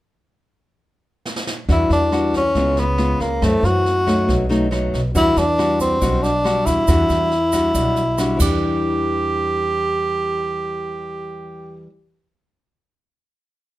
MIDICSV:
0, 0, Header, 1, 5, 480
1, 0, Start_track
1, 0, Key_signature, 1, "minor"
1, 0, Tempo, 433526
1, 1868, Time_signature, 4, 2, 24, 8
1, 15266, End_track
2, 0, Start_track
2, 0, Title_t, "Tenor saxophone"
2, 0, Program_c, 0, 66
2, 1899, Note_on_c, 0, 64, 80
2, 2108, Note_off_c, 0, 64, 0
2, 2131, Note_on_c, 0, 62, 78
2, 2567, Note_off_c, 0, 62, 0
2, 2622, Note_on_c, 0, 61, 84
2, 3092, Note_on_c, 0, 59, 84
2, 3108, Note_off_c, 0, 61, 0
2, 3561, Note_on_c, 0, 58, 77
2, 3578, Note_off_c, 0, 59, 0
2, 3813, Note_on_c, 0, 57, 89
2, 3830, Note_off_c, 0, 58, 0
2, 4046, Note_on_c, 0, 66, 91
2, 4062, Note_off_c, 0, 57, 0
2, 4995, Note_off_c, 0, 66, 0
2, 5724, Note_on_c, 0, 64, 100
2, 5961, Note_on_c, 0, 62, 97
2, 5978, Note_off_c, 0, 64, 0
2, 6428, Note_off_c, 0, 62, 0
2, 6434, Note_on_c, 0, 60, 85
2, 6895, Note_on_c, 0, 62, 94
2, 6912, Note_off_c, 0, 60, 0
2, 7379, Note_on_c, 0, 64, 91
2, 7396, Note_off_c, 0, 62, 0
2, 9298, Note_off_c, 0, 64, 0
2, 9320, Note_on_c, 0, 67, 80
2, 13134, Note_off_c, 0, 67, 0
2, 15266, End_track
3, 0, Start_track
3, 0, Title_t, "Nylon-string guitar"
3, 0, Program_c, 1, 24
3, 1867, Note_on_c, 1, 52, 48
3, 1867, Note_on_c, 1, 55, 47
3, 1874, Note_on_c, 1, 62, 49
3, 1874, Note_on_c, 1, 66, 54
3, 2308, Note_off_c, 1, 55, 0
3, 2309, Note_off_c, 1, 62, 0
3, 2313, Note_off_c, 1, 66, 0
3, 2345, Note_on_c, 1, 55, 53
3, 2352, Note_on_c, 1, 62, 56
3, 2358, Note_on_c, 1, 66, 58
3, 2670, Note_off_c, 1, 55, 0
3, 2671, Note_off_c, 1, 62, 0
3, 2675, Note_off_c, 1, 66, 0
3, 2804, Note_off_c, 1, 52, 0
3, 2834, Note_on_c, 1, 49, 49
3, 2839, Note_on_c, 1, 56, 51
3, 2839, Note_on_c, 1, 59, 47
3, 2845, Note_on_c, 1, 65, 59
3, 3140, Note_off_c, 1, 56, 0
3, 3143, Note_off_c, 1, 59, 0
3, 3145, Note_off_c, 1, 65, 0
3, 3298, Note_on_c, 1, 56, 51
3, 3306, Note_on_c, 1, 59, 48
3, 3310, Note_on_c, 1, 65, 51
3, 3612, Note_off_c, 1, 56, 0
3, 3616, Note_off_c, 1, 59, 0
3, 3617, Note_off_c, 1, 65, 0
3, 3767, Note_off_c, 1, 49, 0
3, 3785, Note_on_c, 1, 42, 48
3, 3790, Note_on_c, 1, 52, 48
3, 3792, Note_on_c, 1, 57, 48
3, 3798, Note_on_c, 1, 60, 54
3, 4263, Note_off_c, 1, 52, 0
3, 4266, Note_off_c, 1, 57, 0
3, 4269, Note_off_c, 1, 60, 0
3, 4501, Note_on_c, 1, 54, 55
3, 4507, Note_on_c, 1, 57, 59
3, 4514, Note_on_c, 1, 63, 58
3, 4722, Note_off_c, 1, 42, 0
3, 4735, Note_on_c, 1, 47, 51
3, 4945, Note_off_c, 1, 54, 0
3, 4949, Note_off_c, 1, 57, 0
3, 4950, Note_off_c, 1, 63, 0
3, 4975, Note_on_c, 1, 54, 54
3, 4979, Note_on_c, 1, 57, 59
3, 4986, Note_on_c, 1, 63, 68
3, 5182, Note_off_c, 1, 54, 0
3, 5184, Note_off_c, 1, 57, 0
3, 5186, Note_off_c, 1, 63, 0
3, 5214, Note_on_c, 1, 54, 56
3, 5219, Note_on_c, 1, 57, 49
3, 5223, Note_on_c, 1, 63, 58
3, 5542, Note_off_c, 1, 54, 0
3, 5544, Note_off_c, 1, 57, 0
3, 5546, Note_off_c, 1, 63, 0
3, 5676, Note_off_c, 1, 47, 0
3, 5697, Note_on_c, 1, 52, 49
3, 5703, Note_on_c, 1, 55, 48
3, 5705, Note_on_c, 1, 66, 58
3, 5709, Note_on_c, 1, 62, 50
3, 6012, Note_off_c, 1, 55, 0
3, 6012, Note_off_c, 1, 62, 0
3, 6013, Note_off_c, 1, 66, 0
3, 6181, Note_on_c, 1, 55, 57
3, 6188, Note_on_c, 1, 62, 50
3, 6193, Note_on_c, 1, 66, 60
3, 6624, Note_off_c, 1, 55, 0
3, 6627, Note_off_c, 1, 62, 0
3, 6629, Note_off_c, 1, 66, 0
3, 6637, Note_off_c, 1, 52, 0
3, 6658, Note_on_c, 1, 55, 51
3, 6659, Note_on_c, 1, 47, 50
3, 6664, Note_on_c, 1, 62, 55
3, 6668, Note_on_c, 1, 66, 56
3, 6969, Note_off_c, 1, 55, 0
3, 6973, Note_off_c, 1, 62, 0
3, 6973, Note_off_c, 1, 66, 0
3, 7134, Note_on_c, 1, 55, 56
3, 7142, Note_on_c, 1, 62, 50
3, 7148, Note_on_c, 1, 66, 59
3, 7579, Note_off_c, 1, 55, 0
3, 7583, Note_off_c, 1, 62, 0
3, 7586, Note_off_c, 1, 66, 0
3, 7596, Note_off_c, 1, 47, 0
3, 7616, Note_on_c, 1, 52, 51
3, 7623, Note_on_c, 1, 55, 47
3, 7624, Note_on_c, 1, 62, 51
3, 7630, Note_on_c, 1, 66, 56
3, 8097, Note_off_c, 1, 55, 0
3, 8100, Note_off_c, 1, 62, 0
3, 8101, Note_off_c, 1, 66, 0
3, 8334, Note_on_c, 1, 55, 54
3, 8341, Note_on_c, 1, 62, 55
3, 8344, Note_on_c, 1, 66, 57
3, 8540, Note_off_c, 1, 55, 0
3, 8540, Note_off_c, 1, 62, 0
3, 8543, Note_off_c, 1, 66, 0
3, 8555, Note_off_c, 1, 52, 0
3, 8577, Note_on_c, 1, 55, 56
3, 8582, Note_on_c, 1, 47, 49
3, 8584, Note_on_c, 1, 62, 50
3, 8589, Note_on_c, 1, 66, 55
3, 8887, Note_off_c, 1, 55, 0
3, 8890, Note_off_c, 1, 62, 0
3, 8893, Note_off_c, 1, 66, 0
3, 9060, Note_on_c, 1, 55, 57
3, 9064, Note_on_c, 1, 62, 53
3, 9072, Note_on_c, 1, 66, 51
3, 9265, Note_on_c, 1, 52, 56
3, 9278, Note_off_c, 1, 55, 0
3, 9291, Note_on_c, 1, 55, 52
3, 9301, Note_off_c, 1, 47, 0
3, 9302, Note_off_c, 1, 62, 0
3, 9304, Note_off_c, 1, 66, 0
3, 9314, Note_on_c, 1, 62, 54
3, 13140, Note_off_c, 1, 52, 0
3, 13167, Note_off_c, 1, 55, 0
3, 13190, Note_off_c, 1, 62, 0
3, 15266, End_track
4, 0, Start_track
4, 0, Title_t, "Upright bass"
4, 0, Program_c, 2, 32
4, 1867, Note_on_c, 2, 40, 92
4, 2091, Note_off_c, 2, 40, 0
4, 2100, Note_on_c, 2, 40, 76
4, 2780, Note_off_c, 2, 40, 0
4, 2823, Note_on_c, 2, 37, 78
4, 3501, Note_off_c, 2, 37, 0
4, 3544, Note_on_c, 2, 37, 76
4, 3768, Note_off_c, 2, 37, 0
4, 3788, Note_on_c, 2, 42, 94
4, 4011, Note_off_c, 2, 42, 0
4, 4016, Note_on_c, 2, 42, 81
4, 4696, Note_off_c, 2, 42, 0
4, 4745, Note_on_c, 2, 35, 83
4, 5420, Note_off_c, 2, 35, 0
4, 5466, Note_on_c, 2, 35, 80
4, 5689, Note_off_c, 2, 35, 0
4, 5702, Note_on_c, 2, 40, 92
4, 5926, Note_off_c, 2, 40, 0
4, 5940, Note_on_c, 2, 40, 85
4, 6617, Note_off_c, 2, 40, 0
4, 6658, Note_on_c, 2, 35, 76
4, 7379, Note_on_c, 2, 40, 78
4, 7395, Note_off_c, 2, 35, 0
4, 7603, Note_off_c, 2, 40, 0
4, 7618, Note_on_c, 2, 40, 90
4, 7843, Note_off_c, 2, 40, 0
4, 7858, Note_on_c, 2, 40, 83
4, 8534, Note_off_c, 2, 40, 0
4, 8572, Note_on_c, 2, 35, 80
4, 9292, Note_off_c, 2, 35, 0
4, 9299, Note_on_c, 2, 40, 83
4, 13112, Note_off_c, 2, 40, 0
4, 15266, End_track
5, 0, Start_track
5, 0, Title_t, "Drums"
5, 1389, Note_on_c, 9, 38, 45
5, 1500, Note_off_c, 9, 38, 0
5, 1505, Note_on_c, 9, 38, 51
5, 1616, Note_off_c, 9, 38, 0
5, 1628, Note_on_c, 9, 38, 52
5, 1738, Note_off_c, 9, 38, 0
5, 1867, Note_on_c, 9, 36, 53
5, 1867, Note_on_c, 9, 38, 22
5, 1978, Note_off_c, 9, 36, 0
5, 1978, Note_off_c, 9, 38, 0
5, 2109, Note_on_c, 9, 38, 22
5, 2219, Note_off_c, 9, 38, 0
5, 2350, Note_on_c, 9, 37, 52
5, 2350, Note_on_c, 9, 38, 21
5, 2461, Note_off_c, 9, 37, 0
5, 2461, Note_off_c, 9, 38, 0
5, 2586, Note_on_c, 9, 36, 22
5, 2587, Note_on_c, 9, 38, 22
5, 2697, Note_off_c, 9, 36, 0
5, 2698, Note_off_c, 9, 38, 0
5, 2823, Note_on_c, 9, 38, 21
5, 2825, Note_on_c, 9, 36, 54
5, 2934, Note_off_c, 9, 38, 0
5, 2936, Note_off_c, 9, 36, 0
5, 3063, Note_on_c, 9, 38, 22
5, 3173, Note_off_c, 9, 38, 0
5, 3302, Note_on_c, 9, 37, 57
5, 3302, Note_on_c, 9, 38, 23
5, 3413, Note_off_c, 9, 37, 0
5, 3413, Note_off_c, 9, 38, 0
5, 3546, Note_on_c, 9, 38, 21
5, 3547, Note_on_c, 9, 36, 20
5, 3656, Note_off_c, 9, 38, 0
5, 3657, Note_off_c, 9, 36, 0
5, 3787, Note_on_c, 9, 36, 55
5, 3788, Note_on_c, 9, 37, 57
5, 3788, Note_on_c, 9, 38, 22
5, 3898, Note_off_c, 9, 36, 0
5, 3899, Note_off_c, 9, 37, 0
5, 3899, Note_off_c, 9, 38, 0
5, 4027, Note_on_c, 9, 38, 21
5, 4137, Note_off_c, 9, 38, 0
5, 4271, Note_on_c, 9, 38, 23
5, 4382, Note_off_c, 9, 38, 0
5, 4507, Note_on_c, 9, 36, 21
5, 4509, Note_on_c, 9, 37, 53
5, 4509, Note_on_c, 9, 38, 23
5, 4618, Note_off_c, 9, 36, 0
5, 4620, Note_off_c, 9, 37, 0
5, 4620, Note_off_c, 9, 38, 0
5, 4746, Note_on_c, 9, 36, 54
5, 4747, Note_on_c, 9, 38, 22
5, 4857, Note_off_c, 9, 36, 0
5, 4858, Note_off_c, 9, 38, 0
5, 4990, Note_on_c, 9, 38, 23
5, 5100, Note_off_c, 9, 38, 0
5, 5227, Note_on_c, 9, 37, 55
5, 5227, Note_on_c, 9, 38, 24
5, 5338, Note_off_c, 9, 37, 0
5, 5338, Note_off_c, 9, 38, 0
5, 5466, Note_on_c, 9, 36, 21
5, 5468, Note_on_c, 9, 38, 22
5, 5576, Note_off_c, 9, 36, 0
5, 5579, Note_off_c, 9, 38, 0
5, 5705, Note_on_c, 9, 36, 55
5, 5707, Note_on_c, 9, 82, 56
5, 5709, Note_on_c, 9, 38, 22
5, 5816, Note_off_c, 9, 36, 0
5, 5817, Note_off_c, 9, 82, 0
5, 5820, Note_off_c, 9, 38, 0
5, 5941, Note_on_c, 9, 38, 22
5, 5946, Note_on_c, 9, 82, 25
5, 6052, Note_off_c, 9, 38, 0
5, 6057, Note_off_c, 9, 82, 0
5, 6188, Note_on_c, 9, 37, 51
5, 6188, Note_on_c, 9, 38, 23
5, 6299, Note_off_c, 9, 37, 0
5, 6299, Note_off_c, 9, 38, 0
5, 6422, Note_on_c, 9, 82, 60
5, 6423, Note_on_c, 9, 36, 21
5, 6427, Note_on_c, 9, 38, 22
5, 6533, Note_off_c, 9, 82, 0
5, 6534, Note_off_c, 9, 36, 0
5, 6537, Note_off_c, 9, 38, 0
5, 6661, Note_on_c, 9, 82, 63
5, 6662, Note_on_c, 9, 36, 57
5, 6663, Note_on_c, 9, 38, 23
5, 6771, Note_off_c, 9, 82, 0
5, 6773, Note_off_c, 9, 36, 0
5, 6774, Note_off_c, 9, 38, 0
5, 6905, Note_on_c, 9, 82, 26
5, 6909, Note_on_c, 9, 38, 23
5, 7015, Note_off_c, 9, 82, 0
5, 7020, Note_off_c, 9, 38, 0
5, 7144, Note_on_c, 9, 37, 57
5, 7144, Note_on_c, 9, 38, 22
5, 7255, Note_off_c, 9, 37, 0
5, 7255, Note_off_c, 9, 38, 0
5, 7380, Note_on_c, 9, 82, 57
5, 7381, Note_on_c, 9, 36, 23
5, 7381, Note_on_c, 9, 38, 22
5, 7491, Note_off_c, 9, 36, 0
5, 7491, Note_off_c, 9, 82, 0
5, 7492, Note_off_c, 9, 38, 0
5, 7612, Note_on_c, 9, 82, 56
5, 7619, Note_on_c, 9, 36, 56
5, 7619, Note_on_c, 9, 37, 54
5, 7619, Note_on_c, 9, 38, 22
5, 7723, Note_off_c, 9, 82, 0
5, 7730, Note_off_c, 9, 36, 0
5, 7730, Note_off_c, 9, 37, 0
5, 7730, Note_off_c, 9, 38, 0
5, 7852, Note_on_c, 9, 82, 27
5, 7859, Note_on_c, 9, 38, 22
5, 7963, Note_off_c, 9, 82, 0
5, 7970, Note_off_c, 9, 38, 0
5, 8096, Note_on_c, 9, 38, 22
5, 8207, Note_off_c, 9, 38, 0
5, 8330, Note_on_c, 9, 82, 61
5, 8336, Note_on_c, 9, 37, 54
5, 8336, Note_on_c, 9, 38, 22
5, 8337, Note_on_c, 9, 36, 23
5, 8441, Note_off_c, 9, 82, 0
5, 8446, Note_off_c, 9, 37, 0
5, 8446, Note_off_c, 9, 38, 0
5, 8448, Note_off_c, 9, 36, 0
5, 8572, Note_on_c, 9, 38, 21
5, 8576, Note_on_c, 9, 36, 55
5, 8578, Note_on_c, 9, 82, 63
5, 8683, Note_off_c, 9, 38, 0
5, 8687, Note_off_c, 9, 36, 0
5, 8689, Note_off_c, 9, 82, 0
5, 8816, Note_on_c, 9, 38, 22
5, 8820, Note_on_c, 9, 82, 25
5, 8926, Note_off_c, 9, 38, 0
5, 8931, Note_off_c, 9, 82, 0
5, 9057, Note_on_c, 9, 82, 53
5, 9059, Note_on_c, 9, 37, 57
5, 9059, Note_on_c, 9, 38, 23
5, 9168, Note_off_c, 9, 82, 0
5, 9169, Note_off_c, 9, 37, 0
5, 9169, Note_off_c, 9, 38, 0
5, 9298, Note_on_c, 9, 49, 53
5, 9299, Note_on_c, 9, 36, 68
5, 9301, Note_on_c, 9, 82, 86
5, 9409, Note_off_c, 9, 49, 0
5, 9410, Note_off_c, 9, 36, 0
5, 9412, Note_off_c, 9, 82, 0
5, 15266, End_track
0, 0, End_of_file